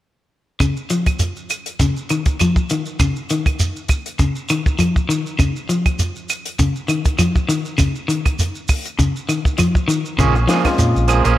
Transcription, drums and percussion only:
0.60 kick, closed hi-hat, claves, shekere
0.77 shekere
0.90 closed hi-hat, shekere
1.06 kick, closed hi-hat, claves, shekere
1.19 closed hi-hat, shekere
1.36 shekere
1.50 closed hi-hat, claves, shekere
1.66 closed hi-hat, shekere
1.79 kick, closed hi-hat, shekere
1.97 shekere
2.09 closed hi-hat, claves, shekere
2.26 kick, closed hi-hat, shekere
2.39 closed hi-hat, claves, shekere
2.56 kick, shekere
2.70 closed hi-hat, shekere
2.86 shekere
3.00 kick, closed hi-hat, claves, shekere
3.16 shekere
3.30 closed hi-hat, shekere
3.46 kick, closed hi-hat, claves, shekere
3.60 closed hi-hat, shekere
3.76 shekere
3.88 kick, closed hi-hat, claves, shekere
4.06 closed hi-hat, shekere
4.19 kick, closed hi-hat, shekere
4.36 shekere
4.49 closed hi-hat, claves, shekere
4.66 kick, shekere
4.79 closed hi-hat, claves, shekere
4.96 kick, shekere
5.10 closed hi-hat, shekere
5.26 shekere
5.39 kick, closed hi-hat, claves, shekere
5.56 shekere
5.70 closed hi-hat, shekere
5.86 kick, closed hi-hat, claves, shekere
5.99 closed hi-hat, shekere
6.16 shekere
6.29 closed hi-hat, claves, shekere
6.45 closed hi-hat, shekere
6.59 kick, closed hi-hat, shekere
6.75 shekere
6.88 closed hi-hat, claves, shekere
7.05 kick, closed hi-hat, shekere
7.19 closed hi-hat, claves, shekere
7.36 kick, shekere
7.49 closed hi-hat, shekere
7.65 shekere
7.78 kick, closed hi-hat, claves, shekere
7.95 shekere
8.09 closed hi-hat, shekere
8.25 kick, closed hi-hat, claves, shekere
8.39 closed hi-hat, shekere
8.55 shekere
8.68 kick, open hi-hat, claves, shekere
8.85 closed hi-hat, shekere
8.99 kick, closed hi-hat, shekere
9.16 shekere
9.29 closed hi-hat, claves, shekere
9.45 kick, shekere
9.58 closed hi-hat, claves, shekere
9.75 kick, shekere
9.89 closed hi-hat, shekere
10.05 shekere
10.19 kick, closed hi-hat, claves, shekere
10.35 shekere
10.49 snare, closed hi-hat, shekere
10.65 kick, snare, closed hi-hat, claves, shekere
10.78 closed hi-hat, shekere
10.96 shekere
11.08 closed hi-hat, claves, shekere
11.25 closed hi-hat, shekere

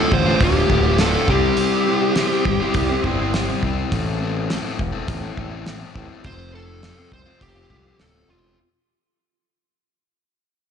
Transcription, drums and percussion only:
0.12 kick
0.40 kick, open hi-hat
0.70 kick
0.98 snare, open hi-hat
1.28 kick
1.57 open hi-hat
2.16 snare, open hi-hat
2.45 kick
2.74 kick, open hi-hat
3.04 kick
3.34 snare, open hi-hat
3.63 kick
3.92 kick, open hi-hat
4.50 snare, open hi-hat
4.79 kick
5.08 kick, open hi-hat
5.37 kick
5.66 snare, open hi-hat
5.96 kick
6.24 kick, open hi-hat
6.83 snare, open hi-hat
7.12 kick
7.41 kick, open hi-hat
7.70 kick
7.99 snare, open hi-hat

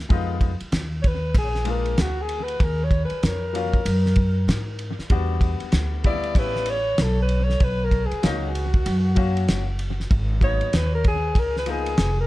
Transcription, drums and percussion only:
0.10 kick, ride
0.41 kick, ride
0.60 ride
0.72 snare, hi-hat pedal, ride
1.04 kick, ride
1.35 kick, ride
1.55 snare
1.65 ride
1.86 ride
1.98 snare, hi-hat pedal, ride
2.29 ride
2.48 ride
2.60 kick, ride
2.91 kick, ride
3.10 ride
3.23 snare, hi-hat pedal, ride
3.55 ride
3.74 kick, ride
3.86 ride
4.06 snare
4.16 kick, ride
4.49 snare, hi-hat pedal, ride
4.79 ride
4.99 snare
5.10 kick, ride
5.41 kick, ride
5.60 ride
5.72 snare, hi-hat pedal, ride
6.04 kick, ride
6.23 ride
6.35 kick, ride
6.56 snare
6.66 ride
6.98 snare, hi-hat pedal, ride
7.29 ride
7.50 snare
7.60 kick, ride
7.91 kick, ride
8.11 ride
8.23 snare, hi-hat pedal, ride
8.55 ride
8.74 kick, ride
8.86 ride
9.16 kick, ride
9.37 ride
9.48 snare, hi-hat pedal, ride
9.79 ride
10.00 snare
10.11 kick, ride
10.41 kick, ride
10.61 ride
10.73 snare, hi-hat pedal, ride
11.04 kick, ride
11.35 kick, ride
11.56 snare
11.66 ride
11.86 ride
11.98 snare, hi-hat pedal, ride

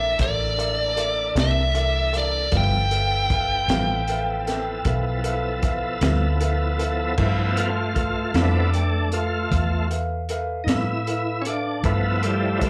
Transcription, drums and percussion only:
0.19 kick, closed hi-hat
0.59 closed hi-hat
0.97 closed hi-hat
1.36 snare, closed hi-hat
1.75 closed hi-hat
2.14 closed hi-hat
2.52 kick, closed hi-hat
2.91 closed hi-hat
3.30 kick, closed hi-hat
3.69 snare, closed hi-hat
4.08 closed hi-hat
4.47 snare, closed hi-hat
4.85 kick, closed hi-hat
5.24 closed hi-hat
5.63 kick, closed hi-hat
6.01 snare, closed hi-hat
6.41 closed hi-hat
6.79 closed hi-hat
7.18 kick, crash
7.57 closed hi-hat
7.96 kick, closed hi-hat
8.34 snare, closed hi-hat
8.73 closed hi-hat
9.12 closed hi-hat
9.52 kick, closed hi-hat
9.91 closed hi-hat
10.29 closed hi-hat
10.68 snare, closed hi-hat
11.07 closed hi-hat
11.45 closed hi-hat
11.84 kick, closed hi-hat
12.23 closed hi-hat
12.61 kick, closed hi-hat

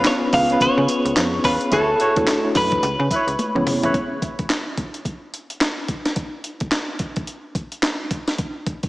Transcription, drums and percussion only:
0.05 snare, clap, closed hi-hat, tambourine
0.33 kick, open hi-hat, tambourine
0.50 closed hi-hat
0.61 kick, closed hi-hat, tambourine
0.88 closed hi-hat, tambourine
1.06 closed hi-hat
1.17 snare, clap, closed hi-hat, tambourine
1.44 kick, open hi-hat, tambourine
1.61 closed hi-hat
1.72 kick, closed hi-hat, tambourine
2.00 closed hi-hat
2.16 kick, closed hi-hat
2.27 snare, clap, closed hi-hat, tambourine
2.55 kick, snare, open hi-hat, tambourine
2.72 kick, closed hi-hat
2.83 closed hi-hat, tambourine
3.11 kick, closed hi-hat, tambourine
3.28 closed hi-hat
3.39 closed hi-hat, high tom
3.56 mid tom
3.67 mid tom, open hi-hat
3.83 closed hi-hat, floor tom
3.94 kick, closed hi-hat
4.22 kick, closed hi-hat
4.39 kick, closed hi-hat
4.50 snare, clap, closed hi-hat
4.78 kick, closed hi-hat
4.94 closed hi-hat
5.05 kick, closed hi-hat
5.34 closed hi-hat
5.50 closed hi-hat
5.61 snare, clap, closed hi-hat
5.88 kick, closed hi-hat
6.05 snare, closed hi-hat
6.16 kick, closed hi-hat
6.44 closed hi-hat
6.60 kick, closed hi-hat
6.72 snare, clap, closed hi-hat
6.99 kick, closed hi-hat
7.16 kick, closed hi-hat
7.27 closed hi-hat
7.55 kick, closed hi-hat
7.72 closed hi-hat
7.83 snare, clap, closed hi-hat
8.11 kick, closed hi-hat
8.28 snare, closed hi-hat
8.38 kick, closed hi-hat
8.66 kick, closed hi-hat
8.83 kick, closed hi-hat

